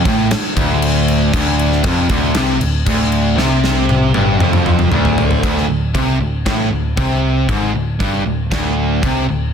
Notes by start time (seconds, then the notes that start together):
0.05 A1 A2, kick, crash
0.31 snare, crash
0.56 D1 D2, kick, crash
0.82 crash
1.08 crash
1.33 D1 D2, kick, crash
1.59 crash
1.72 snare
1.84 F1 F2, kick, crash
2.09 D1 D2, kick, crash
2.35 C2 C3, snare, crash
2.61 D1 D2, crash
2.87 D1 D2, kick, crash
3.12 crash
3.37 C2 C3, snare
3.64 snare
3.89 high tom
4.14 G1 G2, high tom
4.39 F1 F2, mid tom
4.53 mid tom
4.66 mid tom
4.79 mid tom
4.91 D1 D2, mid tom
5.05 floor tom
5.18 floor tom
5.31 floor tom
5.43 D1 D2, kick, crash
5.58 snare
5.69 D1 D2
5.94 C2 C3, kick, crash
6.19 D1 D2
6.45 A1 A2, kick, snare, crash
6.71 D1 D2
6.97 C2 C3, kick, crash
7.49 G#1 G#2, kick, crash
7.74 D1 D2
8.00 G1 G2, kick, crash
8.25 D1 D2
8.51 D1 D2, kick, snare, crash
9.03 C2 C3, kick, crash
9.29 D1 D2